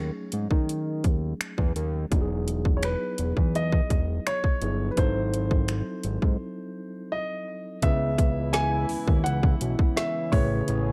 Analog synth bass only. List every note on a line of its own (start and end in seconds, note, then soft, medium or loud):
0.00 0.11 D#2 loud
0.33 0.48 G#2 medium
0.51 1.06 D#3 medium
1.04 1.34 D#2 loud
1.58 1.73 E2 medium
1.76 2.06 D#2 medium
2.12 2.97 E1 loud
3.19 3.34 E1 medium
3.37 3.81 E2 loud
3.91 4.20 E1 medium
4.62 4.91 G1 medium
4.98 5.83 G#1 loud
6.05 6.19 G#1 loud
6.22 6.37 G#2 loud
7.83 8.86 C#2 loud
8.90 8.97 D#2 soft
9.08 9.28 D#2 medium
9.26 9.56 C#2 loud
9.61 9.76 B1 medium
10.33 10.63 A1 loud
10.69 10.92 A1 loud